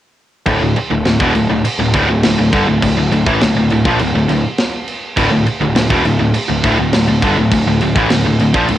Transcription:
0.46 D1 D2 A2, kick, crash
0.61 D1 D2 A2
0.76 muted picked electric bass stroke, muted distorted electric guitar stroke, crash
0.91 D1 D2 A2
1.05 D1 D2 A2, snare, crash
1.20 E1 E2 B2, kick
1.35 D1 D2 A2, crash
1.49 D1 D2 A2
1.64 muted picked electric bass stroke, muted distorted electric guitar stroke, crash
1.79 D1 D2 A2
1.93 D1 D2 A2, kick, crash
2.09 D1 D2 A2
2.23 D1 D2 A2, snare, crash
2.38 D1 D2 A2
2.52 G1 G2 D3, kick, crash
2.68 D1 D2 A2
2.82 D1 D2 A2, kick, crash
2.97 D1 D2 A2
3.12 D1 D2 A2, crash
3.26 A1 A2 E3, kick
3.41 D1 D2 A2, snare, crash
3.55 D1 D2 A2
3.70 D1 D2 A2, crash
3.85 A#1 A#2 F3, kick
3.99 D1 D2 A2, crash
4.15 D1 D2 A2
4.29 D1 D2 A2, crash
4.58 snare, crash
4.87 crash
5.17 D1 D2 A2, kick, crash
5.31 D1 D2 A2
5.46 muted picked electric bass stroke, muted distorted electric guitar stroke, crash
5.61 D1 D2 A2
5.76 D1 D2 A2, snare, crash
5.90 E1 E2 B2, kick
6.05 D1 D2 A2, crash
6.20 D1 D2 A2
6.34 muted picked electric bass stroke, muted distorted electric guitar stroke, crash
6.49 D1 D2 A2
6.64 D1 D2 A2, kick, crash
6.79 D1 D2 A2
6.93 D1 D2 A2, snare, crash
7.08 D1 D2 A2
7.22 G1 G2 D3, kick, crash
7.37 D1 D2 A2
7.51 D1 D2 A2, kick, crash
7.67 D1 D2 A2
7.81 D1 D2 A2, crash
7.95 A1 A2 E3, kick
8.10 D1 D2 A2, snare, crash
8.25 D1 D2 A2
8.39 D1 D2 A2, crash
8.54 A#1 A#2 F3, kick
8.68 D1 D2 A2, crash

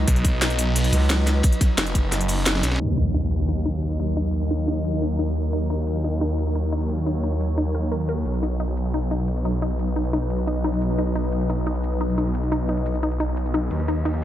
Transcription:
Already playing: F#3 D#4 B4 D#5
0.08 B1, kick, closed hi-hat, ride
0.16 closed hi-hat
0.25 kick, closed hi-hat, ride
0.41 snare, closed hi-hat, ride
0.50 closed hi-hat
0.58 closed hi-hat, ride
0.76 closed hi-hat, open hi-hat
0.84 closed hi-hat
0.92 C#2, closed hi-hat, ride
1.10 snare, closed hi-hat, ride
1.27 snare, closed hi-hat, ride
1.43 kick, closed hi-hat, ride
1.52 closed hi-hat
1.61 kick, snare, closed hi-hat, ride
1.78 F#1, snare, closed hi-hat, ride
1.87 closed hi-hat
1.95 kick, closed hi-hat, ride
2.12 snare, closed hi-hat
2.21 closed hi-hat
2.28 closed hi-hat, open hi-hat
2.46 snare, closed hi-hat, ride
2.55 snare, ride
2.63 B1, snare, closed hi-hat, ride
2.71 snare, ride
2.76 snare, ride
2.80 D#2 F#3 D#4 A#4 D#5, closed hi-hat, impact
2.89 closed hi-hat
2.97 D#4, closed hi-hat, shaker
3.14 D#4, closed hi-hat
3.23 closed hi-hat
3.32 closed hi-hat, shaker
3.48 D#4, closed hi-hat
3.57 closed hi-hat
3.66 D#4, closed hi-hat, shaker
3.83 closed hi-hat
3.91 shaker
4.00 D#4, closed hi-hat, shaker
4.17 D#4, closed hi-hat
4.25 closed hi-hat
4.34 closed hi-hat, shaker
4.51 D#4, closed hi-hat
4.59 closed hi-hat
4.68 D#4, open hi-hat, shaker
4.85 closed hi-hat, shaker
4.93 closed hi-hat
5.02 D#4, closed hi-hat, shaker
5.19 D#4, closed hi-hat
5.28 shaker
5.36 closed hi-hat, shaker
5.53 D#4 C#5, closed hi-hat
5.62 closed hi-hat
5.70 D#4, closed hi-hat, shaker
5.87 closed hi-hat
5.96 closed hi-hat
6.04 D#4, closed hi-hat, shaker
6.21 D#4, closed hi-hat
6.30 closed hi-hat
6.38 closed hi-hat, shaker
6.55 D#4, closed hi-hat
6.64 shaker
6.72 D#4, closed hi-hat, shaker
6.89 closed hi-hat
6.98 closed hi-hat
7.06 D#4, closed hi-hat, shaker
7.24 D#4, closed hi-hat
7.32 closed hi-hat
7.41 open hi-hat, shaker
7.58 D#4, closed hi-hat, shaker
7.66 closed hi-hat
7.75 A#4, closed hi-hat, shaker
7.92 A#4, closed hi-hat
8.00 shaker
8.09 A#4, closed hi-hat, shaker
8.26 B1 D#4 B4 D#5, closed hi-hat
8.34 closed hi-hat
8.43 D#4, closed hi-hat, shaker
8.60 D#4, closed hi-hat
8.68 closed hi-hat
8.77 closed hi-hat, shaker
8.94 D#4, closed hi-hat
9.03 closed hi-hat
9.11 D#4, closed hi-hat, shaker
9.28 closed hi-hat
9.37 shaker
9.45 D#4, closed hi-hat, shaker
9.62 D#4, closed hi-hat
9.71 closed hi-hat
9.79 closed hi-hat, shaker
9.96 D#4, closed hi-hat
10.05 closed hi-hat
10.13 D#4, open hi-hat, shaker
10.30 closed hi-hat, shaker
10.39 closed hi-hat
10.47 D#4, closed hi-hat, shaker
10.64 D#4, closed hi-hat
10.73 shaker
10.81 closed hi-hat, shaker
10.98 D#4, closed hi-hat
11.07 closed hi-hat
11.15 D#4, closed hi-hat, shaker
11.32 closed hi-hat
11.41 closed hi-hat
11.50 D#4, closed hi-hat, shaker
11.67 D#4, closed hi-hat
11.75 closed hi-hat
11.84 closed hi-hat, shaker
12.01 D#4, closed hi-hat
12.09 shaker
12.18 D#4, closed hi-hat, shaker
12.35 closed hi-hat
12.43 closed hi-hat
12.52 D#4, closed hi-hat, shaker
12.69 D#4, closed hi-hat
12.77 closed hi-hat
12.86 open hi-hat, shaker
12.95 shaker
13.03 D#4, closed hi-hat, shaker
13.12 closed hi-hat
13.20 D#4, closed hi-hat, shaker
13.37 closed hi-hat
13.46 shaker
13.54 D#4, closed hi-hat, shaker
13.71 D#2, closed hi-hat, ride
13.80 closed hi-hat
13.88 D#4, closed hi-hat, ride, shaker
14.05 D#4, closed hi-hat, ride
14.14 closed hi-hat

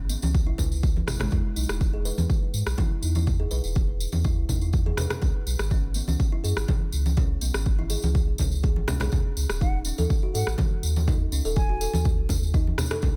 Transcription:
Already playing: G#1
0.09 B3, tambourine
0.22 C#2 C#4, tambourine, high conga
0.34 kick, tambourine
0.47 G#1 E4
0.58 C#2 B4, kick, tambourine, low conga
0.72 tambourine
0.83 kick, tambourine
0.96 high conga
1.07 G#1 E4, cross-stick, tambourine, low conga
1.20 G#1 G#3, cross-stick, tambourine, low conga
1.31 E2 E4, kick, tambourine, low conga
1.56 B1 D#4, tambourine
1.69 E1 E4, cross-stick, tambourine
1.81 kick, tambourine
1.94 G#4
2.05 B4, tambourine
2.18 E2, tambourine, high conga
2.30 kick, tambourine
2.54 G#2, tambourine
2.66 B1, cross-stick, tambourine
2.78 E4, kick, tambourine, high conga, low conga
3.02 E2 D#4, tambourine
3.15 E4, tambourine, high conga
3.27 kick, tambourine, low conga
3.40 G#4
3.51 B1 B4, tambourine
3.64 E1, tambourine
3.75 kick, tambourine
4.00 tambourine
4.12 E2, tambourine, high conga
4.24 E4, kick, tambourine
4.38 B1
4.49 E2 D#4, kick, tambourine, low conga
4.61 E4, tambourine
4.73 kick, tambourine
4.86 G#4, high conga
4.97 E2 B4, cross-stick, tambourine, low conga
5.10 cross-stick, tambourine, low conga
5.22 C#2, kick, tambourine, low conga
5.46 B1, tambourine
5.59 G#1, cross-stick, tambourine
5.71 C#4, kick, tambourine
5.94 B3, tambourine
6.08 C#2 C#4, tambourine, high conga
6.20 kick, tambourine
6.32 E4
6.44 F#2 G#4, tambourine
6.57 G#1, cross-stick, tambourine
6.68 kick, tambourine, high conga, low conga
6.92 C#2, tambourine
7.06 tambourine, high conga
7.17 C#4, kick, tambourine, low conga
7.41 B1 B3, tambourine
7.54 G#1 C#4, cross-stick, tambourine
7.66 kick, tambourine
7.79 E4, high conga
7.90 G#4, tambourine
8.02 C#2, tambourine, high conga
8.15 kick, tambourine
8.28 G#1
8.38 C#2, kick, tambourine, high conga, low conga
8.52 tambourine
8.63 G#4, kick, tambourine
8.76 G#1, high conga
8.88 C#2 C#4, cross-stick, tambourine, low conga
9.00 B1 G#4, cross-stick, tambourine, low conga
9.12 D#2, kick, tambourine, low conga
9.37 C#2, tambourine
9.49 D#1, cross-stick, tambourine
9.61 D#4 F#5, kick, tambourine
9.85 C#4, tambourine
9.98 D#2 A4, tambourine, high conga
10.10 kick, tambourine
10.23 F#4
10.34 G#2 A4 F#5, tambourine
10.47 A1, cross-stick, tambourine
10.58 kick, tambourine, high conga, low conga
10.83 D#2, tambourine
10.96 tambourine, high conga
11.08 D#4, kick, tambourine, low conga
11.32 C#2 C#4, tambourine
11.45 D#1 A4, tambourine
11.56 G#5, kick, tambourine
11.69 F#4
11.81 A4, tambourine
11.93 D#2, tambourine, high conga
12.05 kick, tambourine
12.18 A1
12.29 D#2, kick, tambourine, low conga
12.43 tambourine
12.54 D#4, kick, tambourine
12.67 high conga
12.78 D#2 C#4, cross-stick, tambourine, low conga
12.91 A4, cross-stick, tambourine, low conga
13.02 C#2, kick, tambourine, low conga

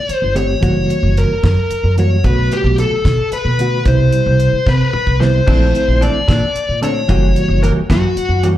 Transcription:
Already playing: D5
0.09 muted upright bass stroke, closed hi-hat
0.16 C5
0.22 G1
0.35 D3 A3 C4 G4 C#5, closed hi-hat
0.61 F#1 E3 G3 A#3 F#4, kick, closed hi-hat
0.90 closed hi-hat
1.03 F#1
1.17 A#4, closed hi-hat
1.30 muted upright bass stroke
1.43 F#2 A#4, kick, snare, closed hi-hat
1.70 muted upright bass stroke, closed hi-hat
1.84 F#2
1.97 E3 G3 A#3 F#4 C#5, closed hi-hat
2.24 B1 D3 A3 B3 F#4 B4, kick, closed hi-hat
2.52 G4, closed hi-hat
2.64 B1
2.78 A4, closed hi-hat
2.91 muted upright bass stroke
3.05 B2, kick, snare, closed hi-hat
3.31 B4, muted upright bass stroke, closed hi-hat
3.45 B2
3.59 D3 A3 B3 F#4, closed hi-hat
3.85 C2 B2 C3 G3 E4 C5, kick, closed hi-hat
4.12 closed hi-hat
4.26 C2
4.40 closed hi-hat
4.53 muted upright bass stroke
4.66 C3 B4, kick, snare
4.93 muted upright bass stroke, mid tom
5.06 C2, kick
5.20 C3 G3 B3 E4 C5, snare
5.47 A#1 D3 E3 A3 C4 D4 E4 A4, kick, crash
5.75 closed hi-hat
5.88 A#1
6.01 E3 C4 D4 A4 D5, closed hi-hat
6.15 muted upright bass stroke
6.28 A#2 E3 C4 D4 A4, kick, snare, closed hi-hat
6.55 muted upright bass stroke, closed hi-hat
6.69 A#2
6.81 D3 A3 C4 D4 A4 C#5, closed hi-hat
7.08 F#1 E3 G3 A#3 C#4 F#4 G4, kick, closed hi-hat
7.36 closed hi-hat
7.48 F#1
7.63 E3 A#3 C#4 G4 A#4, closed hi-hat
7.76 muted upright bass stroke
7.90 F#2 E3 A#3 C#4 F#4 G4, kick, snare, closed hi-hat
8.16 muted upright bass stroke, closed hi-hat
8.29 F#2
8.43 E3 G3 A#3 C#4 F#4 G4, closed hi-hat

